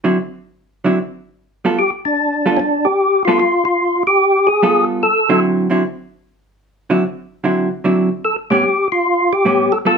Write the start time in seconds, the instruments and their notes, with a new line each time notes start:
0.04 hollow-body jazz guitar D3 F#3 C4 E4
0.84 hollow-body jazz guitar D3 F#3 C4 E4
1.65 hollow-body jazz guitar G3 B3 F4 A4
1.79 tonewheel organ G4
2.05 tonewheel organ D4
2.46 hollow-body jazz guitar G3 B3 F4 A4
2.57 tonewheel organ C#4 D4
2.85 tonewheel organ G4
3.25 hollow-body jazz guitar G3 B3 F4 A4, tonewheel organ F4
3.39 tonewheel organ F4
3.65 tonewheel organ F4
4.07 tonewheel organ G4
4.47 tonewheel organ G#4
4.63 hollow-body jazz guitar G3 B3 F4 A4
5.03 tonewheel organ A4
5.29 hollow-body jazz guitar D3 F#3 C4 E4
5.70 hollow-body jazz guitar D3 F#3 C4 E4
6.90 hollow-body jazz guitar D3 F#3 C4 E4
7.44 hollow-body jazz guitar D3 F#3 C4 E4
7.84 hollow-body jazz guitar D3 F#3 C4 E4
8.25 tonewheel organ A4
8.50 hollow-body jazz guitar A2 G3 B3 C#4, tonewheel organ G4
8.92 tonewheel organ F4
9.33 tonewheel organ G4
9.45 hollow-body jazz guitar A2 G3 B3 C#4
9.72 tonewheel organ A4
9.85 hollow-body jazz guitar G3 B3 F4 A4, tonewheel organ A4